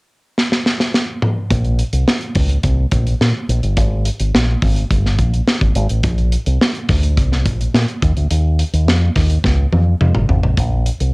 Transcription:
0.38 snare
0.52 snare
0.66 snare
0.80 snare
0.94 snare
1.22 mid tom
1.50 A#1, kick, closed hi-hat
1.64 closed hi-hat
1.79 closed hi-hat
1.93 C2, closed hi-hat
2.08 snare
2.21 closed hi-hat
2.35 C#2, kick, open hi-hat
2.49 closed hi-hat
2.63 C2, kick, closed hi-hat
2.91 A#1, kick, closed hi-hat
3.07 closed hi-hat
3.21 A#2, snare
3.49 A#1, closed hi-hat
3.63 G1, closed hi-hat
3.77 G#1, kick, closed hi-hat
4.05 closed hi-hat
4.20 G#1, closed hi-hat
4.34 A#1, snare
4.62 G#1, kick, open hi-hat
4.76 closed hi-hat
4.91 G1, kick, closed hi-hat
5.06 snare
5.19 A#1, kick, closed hi-hat
5.34 closed hi-hat
5.47 snare
5.61 G#1, kick, closed hi-hat
5.75 G#1, closed hi-hat
5.89 A1, closed hi-hat
6.03 A#1, kick, closed hi-hat
6.18 closed hi-hat
6.32 closed hi-hat
6.46 C2, closed hi-hat
6.61 snare
6.75 closed hi-hat
6.89 D2, kick, snare, open hi-hat
7.03 closed hi-hat
7.17 C2, kick, closed hi-hat
7.32 snare
7.45 A#1, kick, closed hi-hat
7.61 closed hi-hat
7.74 A#2, snare
7.88 closed hi-hat
8.02 D#2, kick, closed hi-hat
8.17 D2, closed hi-hat
8.31 D#2, closed hi-hat
8.59 closed hi-hat
8.73 D#2, closed hi-hat
8.88 F2, snare
9.16 D#2, kick, snare, open hi-hat
9.30 closed hi-hat
9.44 C#2, kick, snare
9.73 F2, high tom
10.01 F2, mid tom
10.15 G1, mid tom
10.29 G#1, floor tom
10.43 A1, floor tom
10.57 A#1, kick, closed hi-hat
10.86 closed hi-hat
11.00 C2, closed hi-hat

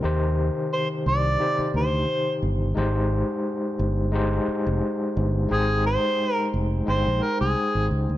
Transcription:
Already playing: C3 D#4 G4 C5
0.01 D#2 D#3 D#4 G4 C5
0.73 C5
1.06 C2 D5
1.38 C3 D#4 G4 C5
1.59 muted fingered electric bass stroke
1.74 D2 C5
2.42 G1
2.75 G#1 G#3 D#4 G4 C5
3.79 G1
4.12 G#3 D#4 G4 C5
4.48 muted fingered electric bass stroke
4.66 F1
5.17 G1
5.49 G#1 G#3 D#4 G#4 C5 G5
5.86 C5
6.34 A#4
6.54 F1
6.86 G1 G#3 D#4 C5 G5
7.07 A#1
7.23 A#4
7.41 C2 G#4
7.75 G#1
7.91 C#2
8.09 D2

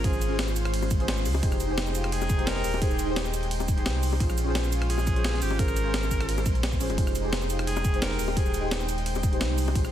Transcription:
Already playing: G#1 G#3 C#4 F4 G#4 C5
0.03 C#4 F4 G#4 C5, kick, closed hi-hat, ride
0.13 shaker
0.22 closed hi-hat, ride, shaker
0.28 C#4 F4 G#4
0.34 C5
0.39 snare, closed hi-hat, ride
0.48 high bongo, shaker
0.56 closed hi-hat, ride, shaker
0.65 cross-stick, closed hi-hat
0.74 closed hi-hat, ride
0.82 high bongo, shaker
0.91 kick, closed hi-hat, ride, shaker
0.99 C#4 F4 G#4 C5, closed hi-hat
1.07 C#4 F4 G#4 C5, snare, closed hi-hat, ride
1.17 shaker
1.26 C#2, open hi-hat, ride, high bongo, shaker
1.34 high bongo
1.42 F1 D#4 G4 G#4 C5 G5, kick, closed hi-hat, ride
1.52 cross-stick, shaker
1.60 closed hi-hat, ride, shaker
1.67 D#4 G4 G#4
1.72 C5
1.78 snare, closed hi-hat, ride
1.87 high bongo, shaker
1.95 F4, closed hi-hat, ride, shaker
2.04 cross-stick, closed hi-hat
2.12 G#4, closed hi-hat, ride
2.22 high bongo, shaker
2.30 kick, closed hi-hat, ride, shaker
2.37 D#4 G4 G#4 C5, closed hi-hat
2.46 D#4 G4 G#4 A#4 C5, snare, closed hi-hat, ride
2.56 snare
2.64 D#1, open hi-hat, ride, shaker
2.74 high bongo
2.80 D#4 G4 G#4 C5, kick, closed hi-hat, ride
2.91 shaker
2.99 closed hi-hat, ride, shaker
3.05 D#4 G4 G#4
3.11 C5
3.16 snare, closed hi-hat, ride
3.26 high bongo, shaker
3.34 closed hi-hat, ride, shaker
3.43 closed hi-hat
3.51 closed hi-hat, ride
3.60 high bongo, shaker
3.68 kick, closed hi-hat, ride, shaker
3.76 D#4 G4 G#4 C5, closed hi-hat
3.84 C2 D#4 G4 G#4 C5, snare, closed hi-hat, ride
4.03 open hi-hat, ride, shaker
4.13 high bongo
4.19 A#1 G#3 C#4 F4 G#4 C5, kick, closed hi-hat, ride
4.30 cross-stick, shaker
4.38 closed hi-hat, ride, shaker
4.44 C#4 F4 G#4
4.50 C5
4.55 snare, closed hi-hat, ride
4.64 high bongo, shaker
4.73 F4, closed hi-hat, ride, shaker
4.82 cross-stick, closed hi-hat
4.90 G#4, closed hi-hat, ride
4.98 high bongo, shaker
5.07 kick, closed hi-hat, ride, shaker
5.15 C#4 F4 G#4 C5, closed hi-hat
5.23 C#4 F4 G#4 C5, snare, closed hi-hat, ride
5.34 snare
5.42 G#1 G4, open hi-hat, ride, shaker
5.50 high bongo
5.58 C#4 F4 G#4 A#4 C5, kick, closed hi-hat, ride
5.68 cross-stick, shaker
5.77 closed hi-hat, ride, shaker
5.83 C#4 F4 G#4
5.88 C5
5.94 snare, closed hi-hat, ride
6.03 high bongo, shaker
6.11 kick, closed hi-hat, ride, shaker
6.21 cross-stick, closed hi-hat
6.29 closed hi-hat, ride
6.38 high bongo, shaker
6.46 A#1, kick, closed hi-hat, ride, shaker
6.55 closed hi-hat
6.63 snare, closed hi-hat, ride
6.72 kick, shaker
6.79 C#4 F4 G#4 C5, open hi-hat, ride, shaker
6.90 F1, closed hi-hat, high bongo
6.96 F1 D#4 G4 G#4 C5 G5, kick, closed hi-hat, ride
7.07 cross-stick, shaker
7.15 closed hi-hat, ride, shaker
7.22 D#4 G4 G#4
7.27 C5
7.33 snare, closed hi-hat, ride
7.42 high bongo, shaker
7.50 F4, closed hi-hat, ride, shaker
7.59 cross-stick, closed hi-hat
7.67 G#4, closed hi-hat, ride
7.77 high bongo, shaker
7.85 kick, closed hi-hat, ride, shaker
7.92 D#4 G4 G#4 C5, closed hi-hat
8.00 D#4 G4 A#4 C5, snare, closed hi-hat, ride
8.11 snare
8.19 D#1, open hi-hat, ride, shaker
8.28 high bongo
8.35 D#4 G4 G#4 C5, kick, closed hi-hat, ride
8.46 shaker
8.54 closed hi-hat, ride, shaker
8.60 D#4 G4 G#4
8.66 C5
8.71 snare, closed hi-hat, ride
8.81 high bongo, shaker
8.89 closed hi-hat, ride, shaker
8.98 closed hi-hat
9.06 closed hi-hat, ride
9.15 high bongo, shaker
9.23 kick, closed hi-hat, ride, shaker
9.31 D#4 G4 G#4 C5, closed hi-hat
9.39 C2 D#4 G#4 C5, snare, closed hi-hat, ride
9.58 open hi-hat, ride, shaker
9.68 high bongo
9.74 A#1 C#4 F4 G#4 C5, kick, closed hi-hat, ride
9.85 cross-stick, shaker

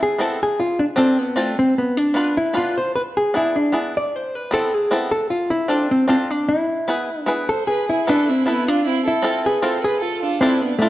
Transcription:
0.03 G#4
0.18 B3 C4 E4 A4
0.43 G#4
0.60 F4
0.79 D4
0.96 C4 D4 F4 A4
1.19 B3
1.36 A3 C4 D4 F4 A4
1.59 C4
1.78 B3
1.97 D4
2.14 B3 D4 F4 B4
2.37 E4
2.53 B3 D4 F4 B4
2.78 C5
2.96 B4
3.17 G#4
3.34 B3 D4 E4 G#4
3.56 D4
3.72 B3 D4 E4 G#4
3.97 D5
4.16 C5
4.35 B4
4.51 B3 C4 E4 A4
4.74 G#4
4.91 B3 C4 E4 A4
5.11 A4
5.30 F4
5.50 E4
5.68 C4 D4 F4 A4
5.91 C4
6.08 C4 D4 F4 A4
6.31 D4
6.49 E4
6.88 B3 E4 G#4 B4
7.22 D4
7.26 B3 E4 G#4 B4
7.49 A4 C5
7.67 G#4 B4
7.88 E4 G#4
8.07 B3 D4 E4 A4 B4
8.28 C4 E4
8.46 B3 E4 A4 B4
8.68 D4 F4
8.85 C4 E4
9.05 E4 A4
9.22 C4 E4 F4 A4
9.45 G#4 B4
9.62 C4 E4 F4 A4 C5
9.83 G#4 B4
10.00 F4 A4
10.22 D4 F4
10.41 C4 D4 E4 F4 A4
10.61 B3 D4
10.79 A3 D4 E4 F4 A4

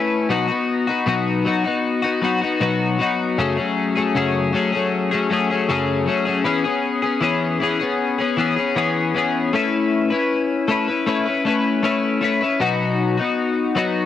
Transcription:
Already playing: A3 C#4 E4 B4
0.29 B2 F#3 B3 D#4 F#4
0.48 B3 D#4 F#4
0.87 B3 D#4 F#4
1.06 B2 F#3 B3 D#4 F#4
1.45 F#3 B3 D#4 F#4
1.64 B3 D#4 F#4
2.02 B3 D#4 F#4
2.22 F#3 B3 D#4 F#4
2.41 B3 D#4 F#4
2.60 B2 F#3 B3 D#4 F#4
2.99 F#3 B3 D#4 F#4
3.38 F#2 C#3 F#3 A3 C#4 G#4
3.57 F#3 A3 C#4 G#4
3.95 F#3 A3 C#4 G#4
4.15 F#2 C#3 F#3 A3 C#4 G#4
4.53 F#3 A3 C#4 G#4
4.72 F#3 A3 C#4 G#4
5.11 F#3 A3 C#4 G#4
5.30 F#3 A3 C#4 G#4
5.50 F#3 A3 C#4 G#4
5.69 F#2 C#3 F#3 A3 C#4 G#4
6.06 F#3 A3 C#4 G#4
6.25 F#3 A3 C#4 G#4
6.44 E3 B3 C#4 G#4
6.64 B3 C#4 G#4
7.02 B3 C#4 G#4
7.21 E3 B3 C#4 G#4
7.60 E3 B3 C#4 G#4
7.80 B3 C#4 G#4
8.19 B3 C#4 G#4
8.37 E3 B3 C#4 G#4
8.56 B3 C#4 G#4
8.76 E3 B3 C#4 G#4
9.15 E3 B3 C#4 G#4
9.53 A3 C#4 E4 B4
10.10 C#4 E4 B4
10.68 A3 C#4 E4 B4
10.88 C#4 E4 B4
11.06 A3 C#4 E4 B4
11.25 C#4 E4 B4
11.45 A3 C#4 E4 B4
11.83 A3 C#4 E4 B4
12.21 A3 C#4 E4 B4
12.41 C#4 E4 B4
12.60 B2 F#3 B3 D#4 F#4
13.18 B3 D#4 F#4
13.75 F#3 B3 D#4 F#4

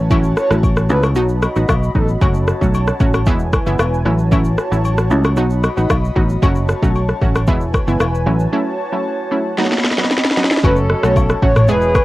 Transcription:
Already playing: A1 F#4 C#5 A5
0.10 F#3 A3 C#4 E4, kick, high agogo, shaker
0.23 shaker
0.37 C#5, cross-stick, shaker
0.51 A1 F#3 A3 C#4 E4, cross-stick, shaker
0.63 kick, high agogo, shaker
0.77 cross-stick, shaker
0.89 C#2 F#3 A3 C#4 E4 B4, shaker
1.03 cross-stick, high agogo, shaker
1.15 B1 F#3 B3 D#4 F#4 D#5 B5, shaker
1.29 shaker
1.42 cross-stick, high agogo, shaker
1.56 A1 F#3 B3 D#4 F#4, shaker
1.68 B1, kick, cross-stick, high agogo, low woodblock, shaker
1.83 shaker
1.94 A1 F#3 B3 D#4 F#4 A4, kick, shaker
2.08 shaker
2.21 F#1 F#3 A3 C#4 F#4 C#5 A5, kick, high agogo, shaker
2.34 shaker
2.47 cross-stick, shaker
2.61 B1 F#3 A3 C#4 F#4, kick, shaker
2.74 high agogo, shaker
2.87 cross-stick, shaker
3.00 A1 F#3 A3 C#4 F#4, kick, shaker
3.14 cross-stick, high agogo, shaker
3.26 E1 E3 G#3 B3 E4 B4 G#5, kick, shaker
3.39 shaker
3.53 kick, cross-stick, high agogo, shaker
3.66 F#1 E3 G#3 B3 E4, shaker
3.79 E1, cross-stick, high agogo, low woodblock, shaker
3.94 shaker
4.05 A1 F#3 A3 C#4 E4 F#4 C#5 A5
4.19 shaker
4.31 F#3 A3 C#4 E4, kick, high agogo, shaker
4.45 shaker
4.58 cross-stick, shaker
4.72 A1 F#3 A3 C#4 E4, shaker
4.85 high agogo, shaker
4.98 cross-stick, shaker
5.10 C#2 F#3 A3 C#4 E4, shaker
5.24 cross-stick, high agogo, shaker
5.37 B1 F#3 B3 D#4 F#4 D#5 B5, shaker
5.50 shaker
5.63 cross-stick, high agogo, shaker
5.77 A1 F#3 B3 D#4 F#4, shaker
5.90 B1, kick, cross-stick, high agogo, low woodblock, shaker
6.04 shaker
6.16 A1 F#3 B3 D#4 F#4, kick
6.29 shaker
6.42 F#1 F#3 A3 C#4 F#4 C#5 A5, kick, high agogo, shaker
6.55 shaker
6.68 cross-stick, shaker
6.82 B1 F#3 A3 C#4 F#4, kick, shaker
6.95 high agogo, shaker
7.08 cross-stick, shaker
7.21 A1 F#3 A3 C#4 F#4, kick, shaker
7.35 cross-stick, high agogo, shaker
7.47 E1 E3 G#3 B3 E4 B4 G#5, kick, shaker
7.61 shaker
7.74 kick, cross-stick, high agogo, shaker
7.87 F#1 E3 G#3 B3 E4, shaker
8.00 E1, cross-stick, high agogo, low woodblock, shaker
8.15 shaker
8.26 A1 F#3 A3 C#4 E4 F#4 C#5 A5
8.40 shaker
8.53 F#3 A3 C#4 E4
8.93 F#3 A3 C#4 E4
9.31 F#3 A3 C#4 E4
9.58 F#3 B3 D#4 F#4 D#5 B5, snare
9.65 snare
9.72 snare
9.78 snare
9.85 snare
9.91 snare
9.98 F#3 B3 D#4 F#4, snare
10.04 snare
10.11 snare
10.18 snare
10.25 snare
10.31 snare
10.37 F#3 B3 D#4 F#4, snare
10.44 snare
10.51 snare
10.57 snare
10.63 F#1 F#3 A3 C#4 F#4 A4 B4 C#5 A5, kick, high agogo, shaker
10.76 shaker
10.90 cross-stick
11.03 B1 F#3 A3 C#4 F#4 C#5, cross-stick, shaker
11.16 kick, high agogo, low woodblock, shaker
11.29 cross-stick, shaker
11.42 A1 F#3 A3 C#4 F#4 C#5, kick
11.56 C#5, cross-stick, mid tom, high agogo, shaker
11.68 E1 E3 G#3 B3 E4 G#4 B4 E5 B5, shaker
11.81 shaker
11.95 kick, cross-stick, high agogo, shaker

